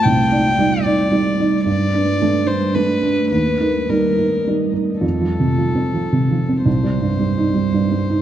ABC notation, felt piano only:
X:1
M:3/4
L:1/8
Q:1/4=110
K:Cdor
V:1 name="Felt piano"
C,, [Ed] [G,Ed] [Ed] [G,Ed] [Ed] | G,, [D=B] [A,DB] [DB] [A,DB] [DB] | E,, [EB] [G,EB] [EB] [G,EB] [EB] | (3F,, F, C, (3F, C F, (3C, F, C |
(3C,, G, G,, (3G, E G, (3G,, G, E |]